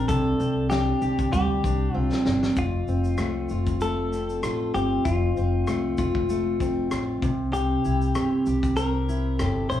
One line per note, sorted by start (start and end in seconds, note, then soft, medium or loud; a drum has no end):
0.00 1.32 G3 medium
0.00 0.39 C4 medium
0.00 0.70 D4 medium
0.00 1.01 G4 medium
0.08 0.35 C2 loud
0.08 2.57 C3 medium
0.08 0.67 A4 medium
0.08 kick loud
0.08 shaker medium
0.40 0.91 C2 medium
0.40 1.94 C4 medium
0.40 shaker soft
0.70 1.63 D4 medium
0.70 1.28 G4 medium
0.70 snare loud
0.70 shaker medium
1.02 1.27 C2 medium
1.02 2.64 G4 medium
1.02 shaker soft
1.19 kick medium
1.19 shaker soft
1.32 1.59 D2 medium
1.32 2.64 G3 medium
1.32 1.96 G4 medium
1.32 kick loud
1.32 shaker medium
1.64 1.90 C2 medium
1.64 2.25 D4 medium
1.64 kick medium
1.64 shaker medium
1.94 2.09 C2 medium
1.94 2.88 C4 medium
1.94 2.22 F4 medium
2.12 snare medium
2.26 2.51 G1 loud
2.26 2.64 D4 medium
2.26 snare medium
2.43 snare medium
2.56 2.82 F1 medium
2.56 5.05 F2 medium
2.56 3.86 F4 medium
2.56 kick loud
2.56 shaker medium
2.88 3.14 F1 medium
2.88 4.12 C4 medium
2.88 shaker soft
3.04 shaker soft
3.17 3.44 C2 medium
3.17 3.80 A3 medium
3.17 cross-stick medium
3.17 shaker medium
3.49 4.40 F1 medium
3.49 4.43 F4 medium
3.49 shaker soft
3.67 kick medium
3.67 shaker soft
3.81 5.67 A3 medium
3.81 4.74 A4 medium
3.81 shaker medium
4.12 4.75 C4 soft
4.12 cross-stick soft
4.12 shaker soft
4.29 shaker soft
4.43 4.69 A1 medium
4.43 5.97 F4 medium
4.43 cross-stick loud
4.43 shaker medium
4.74 5.00 G1 medium
4.74 5.37 C4 medium
4.74 5.03 G4 medium
4.74 shaker soft
5.05 5.31 F1 medium
5.05 7.30 F2 medium
5.05 6.87 F4 medium
5.05 kick loud
5.05 shaker medium
5.37 5.63 F1 medium
5.37 6.61 C4 medium
5.37 shaker soft
5.67 5.94 C2 medium
5.67 6.28 A3 medium
5.67 cross-stick medium
5.67 shaker medium
5.98 6.88 F1 medium
5.98 6.91 F4 medium
5.98 kick medium
5.98 shaker soft
6.15 kick medium
6.29 7.29 A3 medium
6.29 shaker medium
6.60 7.84 C4 medium
6.60 kick medium
6.60 shaker medium
6.91 7.18 A1 medium
6.91 7.30 F4 medium
6.91 cross-stick loud
6.91 shaker medium
7.22 7.74 C2 loud
7.22 7.52 C3 medium
7.22 kick medium
7.22 shaker soft
7.53 9.80 C3 medium
7.53 8.76 G4 medium
7.53 shaker medium
7.85 8.11 C2 medium
7.85 9.07 E4 medium
7.85 shaker soft
8.01 shaker soft
8.15 8.41 G1 medium
8.15 8.78 C4 medium
8.15 cross-stick loud
8.15 shaker medium
8.46 9.41 C2 medium
8.46 9.38 G4 medium
8.46 shaker medium
8.63 kick medium
8.63 shaker soft
8.77 9.80 C4 medium
8.77 9.42 A#4 medium
8.77 shaker medium
9.09 9.69 E4 medium
9.09 shaker medium
9.39 9.65 G1 medium
9.39 9.80 G4 medium
9.39 9.69 A4 medium
9.39 cross-stick loud
9.39 shaker medium
9.70 9.80 A#1 medium
9.70 9.80 E4 medium
9.70 9.80 C5 medium
9.70 shaker soft